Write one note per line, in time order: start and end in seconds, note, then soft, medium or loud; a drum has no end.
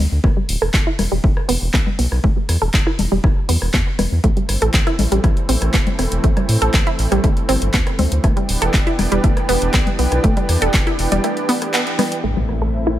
0.12 0.19 D2 medium
0.24 0.32 E1 loud
0.24 0.33 A3 loud
0.24 kick loud
0.24 cross-stick medium
0.37 0.45 G3 medium
0.49 0.57 D1 medium
0.49 open hi-hat loud
0.62 0.69 E1 medium
0.62 0.73 A4 loud
0.62 cross-stick medium
0.74 0.82 E1 loud
0.74 kick loud
0.74 clap loud
0.87 0.95 E4 loud
0.99 1.07 E1 medium
0.99 cross-stick medium
0.99 open hi-hat medium
0.99 low conga medium
1.12 1.19 E1 medium
1.12 1.20 G3 loud
1.24 1.32 E1 loud
1.24 1.36 A3 medium
1.24 kick loud
1.37 cross-stick medium
1.49 1.57 E1 medium
1.49 1.58 B3 loud
1.49 open hi-hat loud
1.62 1.69 E1 medium
1.74 1.82 B1 loud
1.74 1.86 B3 medium
1.74 kick loud
1.74 cross-stick medium
1.74 clap loud
1.87 low conga medium
1.99 2.07 B1 medium
1.99 2.08 B3 medium
1.99 open hi-hat loud
2.12 2.19 B1 medium
2.12 cross-stick medium
2.24 2.32 E1 loud
2.24 2.33 A3 loud
2.24 kick loud
2.37 2.45 G3 medium
2.49 2.57 E2 medium
2.49 cross-stick medium
2.49 open hi-hat loud
2.62 2.69 E1 medium
2.62 2.73 A4 loud
2.74 2.82 E1 loud
2.74 kick loud
2.74 clap loud
2.87 2.95 E4 loud
2.87 cross-stick medium
2.99 3.07 E1 medium
2.99 open hi-hat medium
2.99 low conga medium
3.12 3.19 E1 medium
3.12 3.20 G3 loud
3.24 3.32 E1 loud
3.24 3.36 A3 medium
3.24 kick loud
3.24 cross-stick medium
3.49 3.57 E2 medium
3.49 3.58 B3 loud
3.49 open hi-hat loud
3.62 3.69 E1 medium
3.62 cross-stick medium
3.74 3.82 E2 medium
3.74 3.86 B3 medium
3.74 kick loud
3.74 clap loud
3.99 4.07 E1 medium
3.99 4.08 B3 medium
3.99 cross-stick medium
3.99 open hi-hat medium
3.99 low conga medium
4.12 4.19 E2 medium
4.24 4.32 A1 loud
4.24 8.20 E3 medium
4.24 4.33 A3 loud
4.24 8.20 A3 medium
4.24 8.20 C4 medium
4.24 kick loud
4.24 closed hi-hat medium
4.37 4.45 G3 medium
4.37 closed hi-hat soft
4.49 4.57 G1 medium
4.49 cross-stick medium
4.49 open hi-hat loud
4.62 4.69 A1 medium
4.62 4.73 A4 loud
4.62 closed hi-hat medium
4.74 4.82 A1 loud
4.74 kick loud
4.74 clap loud
4.74 closed hi-hat medium
4.87 4.95 E4 loud
4.87 cross-stick medium
4.87 closed hi-hat soft
4.99 5.07 A1 medium
4.99 open hi-hat medium
4.99 low conga medium
5.12 5.19 A1 medium
5.12 5.20 G3 loud
5.12 closed hi-hat medium
5.24 5.32 A1 loud
5.24 5.36 A3 medium
5.24 kick loud
5.24 cross-stick medium
5.24 closed hi-hat medium
5.37 closed hi-hat soft
5.49 5.57 A1 medium
5.49 5.58 C4 loud
5.49 open hi-hat loud
5.62 5.69 A1 medium
5.62 cross-stick medium
5.62 closed hi-hat medium
5.74 5.82 E1 loud
5.74 5.86 B3 medium
5.74 kick loud
5.74 clap loud
5.74 closed hi-hat medium
5.87 closed hi-hat soft
5.87 low conga medium
5.99 6.07 E1 medium
5.99 6.08 C4 medium
5.99 cross-stick medium
5.99 open hi-hat medium
6.12 6.19 E1 medium
6.12 closed hi-hat medium
6.24 6.32 A1 loud
6.24 6.33 A3 loud
6.24 kick loud
6.24 closed hi-hat medium
6.37 6.45 G3 medium
6.37 cross-stick medium
6.37 closed hi-hat soft
6.49 6.57 A2 medium
6.49 open hi-hat loud
6.62 6.69 A1 medium
6.62 6.73 A4 loud
6.62 closed hi-hat medium
6.74 6.82 A1 loud
6.74 kick loud
6.74 cross-stick medium
6.74 clap loud
6.74 closed hi-hat medium
6.87 6.95 E4 loud
6.87 closed hi-hat soft
6.99 7.07 A1 loud
6.99 open hi-hat medium
7.12 7.19 A1 medium
7.12 7.20 G3 loud
7.12 cross-stick medium
7.12 closed hi-hat medium
7.24 7.32 G1 loud
7.24 7.36 A3 medium
7.24 kick loud
7.24 closed hi-hat medium
7.37 closed hi-hat soft
7.49 7.57 G1 medium
7.49 7.58 C4 loud
7.49 cross-stick medium
7.49 open hi-hat loud
7.62 7.69 G1 medium
7.62 closed hi-hat medium
7.74 7.82 D2 loud
7.74 7.86 B3 medium
7.74 kick loud
7.74 clap loud
7.74 closed hi-hat medium
7.87 cross-stick medium
7.87 closed hi-hat soft
7.99 8.07 D2 medium
7.99 8.08 C4 medium
7.99 open hi-hat medium
7.99 low conga loud
8.12 8.19 D2 medium
8.12 closed hi-hat medium
8.24 8.32 E1 loud
8.24 12.20 E3 medium
8.24 8.33 A3 loud
8.24 12.20 B3 medium
8.24 12.20 D4 medium
8.24 12.20 G4 medium
8.24 kick loud
8.24 cross-stick soft
8.24 closed hi-hat medium
8.37 8.45 G3 medium
8.37 closed hi-hat soft
8.49 8.57 D1 medium
8.49 open hi-hat loud
8.62 8.69 E1 medium
8.62 8.73 A4 loud
8.62 cross-stick medium
8.62 closed hi-hat medium
8.74 8.82 E1 loud
8.74 kick loud
8.74 clap loud
8.74 closed hi-hat medium
8.87 8.95 E4 loud
8.87 closed hi-hat soft
8.99 9.07 E1 medium
8.99 cross-stick medium
8.99 open hi-hat medium
8.99 low conga medium
9.12 9.19 E1 medium
9.12 9.20 G3 loud
9.12 closed hi-hat medium
9.24 9.32 E1 loud
9.24 9.36 A3 medium
9.24 kick loud
9.24 closed hi-hat medium
9.37 cross-stick soft
9.37 closed hi-hat soft
9.49 9.57 E1 medium
9.49 9.58 B3 loud
9.49 open hi-hat loud
9.62 9.69 E1 medium
9.62 closed hi-hat medium
9.74 9.82 B1 loud
9.74 9.86 B3 medium
9.74 kick loud
9.74 cross-stick soft
9.74 clap loud
9.74 closed hi-hat medium
9.87 closed hi-hat soft
9.87 low conga medium
9.99 10.07 B1 medium
9.99 10.08 B3 medium
9.99 open hi-hat medium
10.12 10.19 B1 medium
10.12 cross-stick medium
10.12 closed hi-hat medium
10.24 10.32 E1 loud
10.24 10.33 A3 loud
10.24 kick loud
10.24 closed hi-hat medium
10.37 10.45 G3 medium
10.37 closed hi-hat soft
10.49 10.57 E2 medium
10.49 cross-stick soft
10.49 open hi-hat loud
10.62 10.69 E1 medium
10.62 10.73 A4 loud
10.62 closed hi-hat medium
10.74 10.82 E1 loud
10.74 kick loud
10.74 clap loud
10.74 closed hi-hat medium
10.87 10.95 E4 loud
10.87 cross-stick soft
10.87 closed hi-hat soft
10.99 11.07 E1 medium
10.99 open hi-hat medium
11.12 11.19 E1 medium
11.12 11.20 G3 loud
11.12 closed hi-hat medium
11.24 11.36 A3 medium
11.24 cross-stick soft
11.24 closed hi-hat medium
11.37 closed hi-hat soft
11.49 11.58 B3 loud
11.49 open hi-hat loud
11.62 cross-stick medium
11.62 closed hi-hat medium
11.74 11.86 B3 medium
11.74 clap loud
11.74 closed hi-hat medium
11.87 closed hi-hat soft
11.99 12.08 B3 medium
11.99 cross-stick soft
11.99 open hi-hat medium
11.99 low conga medium
12.12 closed hi-hat medium
12.24 12.99 A1 medium
12.24 12.99 A2 medium
12.24 12.33 A3 medium
12.24 12.99 A3 medium
12.24 12.99 C4 medium
12.24 12.99 E4 medium
12.24 impact medium
12.37 12.45 G3 medium
12.49 cross-stick soft
12.62 12.73 A4 medium
12.87 12.95 E4 medium
12.87 cross-stick soft